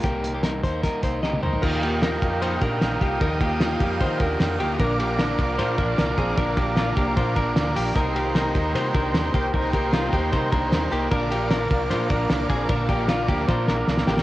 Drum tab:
CC |----------------|x---------------|----------------|----------------|
RD |----------------|--x-x-x-x-x-x-x-|x-x-x-x-x-x-x-x-|x-x-x-x-x-x-x-x-|
HH |x-x-x-x-x-x-----|----------------|----------------|----------------|
SD |----o---o---o---|----o-------o---|----o-------o---|----o---o---o---|
T1 |-------------o--|----------------|----------------|----------------|
T2 |--------------o-|----------------|----------------|----------------|
FT |---------------o|----------------|----------------|----------------|
BD |o-----o-o-o-----|o-----o---o---o-|o-o---o-o-o-----|o-----o---o---o-|

CC |----------------|----------------|----------------|----------------|
RD |x-x-x-x-x-x-x-x-|x-x-x-x-x-x-x-x-|x-x-x-x-x-x-x-x-|x-x-x-x-x-x-x-x-|
HH |--------------o-|p---------------|----------------|----------------|
SD |----o---o---o---|----o---o---o---|----o---o---o---|----o---o---o---|
T1 |----------------|----------------|----------------|----------------|
T2 |----------------|----------------|----------------|----------------|
FT |----------------|----------------|----------------|----------------|
BD |o-o---o-o-o-----|o-----o---o---o-|o-o---o-o-o-----|o-----o---o---o-|

CC |----------------|
RD |x-x-x-x---------|
HH |----------------|
SD |----o---o-o-oooo|
T1 |----------------|
T2 |----------------|
FT |----------------|
BD |o-o---o-o-------|